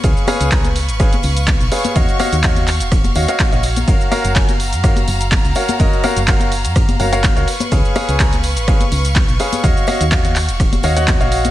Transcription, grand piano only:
X:1
M:4/4
L:1/16
Q:"Swing 16ths" 1/4=125
K:F#
V:1 name="Grand piano"
[GBce]2 [GBce]2 [Bca] z3 [GBce] z4 z [GBce]2 | [Fcde]2 [Fcde] z [Fcde]2 z4 [Fcde] [Fcde]2 [Fcde] z2 | [FAce]2 [FAce]2 [FAcg] z3 [FAce] z4 z [FAce]2 | [FAcd]2 [FAce] z [FAce]2 z4 [FAce] [FAce]2 [FAce] z2 |
[GBce]2 [GBce]2 [GBca] z3 [GBce] z4 z [GBce]2 | [Fcde]2 [Fcde] z [Fcde]2 z4 [Fcde] [Fcdf]2 [Fcde]3 |]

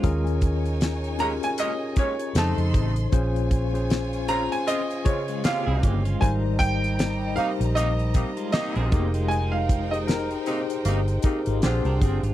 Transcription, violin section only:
X:1
M:4/4
L:1/8
Q:"Swing 16ths" 1/4=78
K:Bbdor
V:1 name="Violin section"
[Eda]6 [=Aec']2 | [Fda]8 | [G,eb]6- [G,eb] [Ecg]- | [Ecg]6 [=Dcg]2 |]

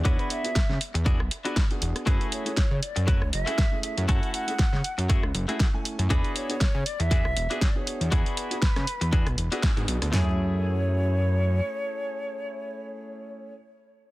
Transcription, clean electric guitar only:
X:1
M:4/4
L:1/16
Q:"Swing 16ths" 1/4=119
K:F#m
V:1 name="Clean electric guitar"
[DEFB]4 z4 [DEFG] z2 [DEFB] z4 | [A,EFG]4 z4 [A,EFB] z2 [A,EFG] z4 | [A,EFA]4 z4 [A,EFG] z2 [A,EFG] z4 | [DEFG]4 z4 [DEFG] z2 [DEFG] z4 |
[DEFG]4 z4 [DEFG] z2 [DEFG] z4 | [A,EG]16- | [A,EG]16 |]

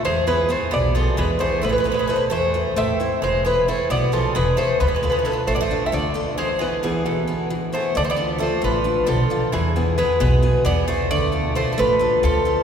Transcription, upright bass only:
X:1
M:7/8
L:1/8
Q:1/4=133
K:Ephr
V:1 name="Upright bass" clef=bass
E,,3 B,,,2 E,, z | A,,,3 E,,2 A,,, z | E,,,3 B,,,2 E,,, z | D,,3 A,,,2 D,, z |
z6 z | D,,3 A,,,2 B,,, z | E,,3 B,,,2 E,, z | D,,3 A,,,2 D,, z |]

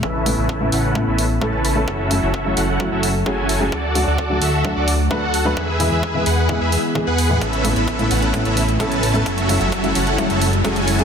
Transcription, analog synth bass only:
X:1
M:4/4
L:1/16
Q:1/4=130
K:A
V:1 name="Analog synth bass" clef=bass
A,,,3 A,,,3 A,,,3 A,,,3 A,,,4 | F,,,3 F,,,3 F,,,3 F,,,3 F,,,4 | D,,3 D,,3 D,,3 D,,3 D,,4 | E,,3 E,,3 E,,3 E,, z3 E,,3 |
A,,,3 A,,,3 A,,,3 A,,,3 A,,,4 | F,,,3 F,,,3 F,,,3 F,,,3 F,,,4 |]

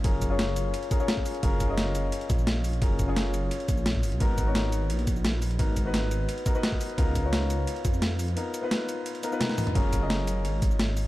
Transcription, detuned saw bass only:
X:1
M:4/4
L:1/16
Q:1/4=173
K:F#
V:1 name="Detuned saw bass" clef=bass
F,,,8 z8 | F,,,8 z2 A,,,6 | F,,,8 z2 A,,,4 F,,, C,, | G,,,8 A,,,8 |
G,,,8 z8 | C,,8 z2 E,,6 | z16 | F,,,8 G,,,8 |]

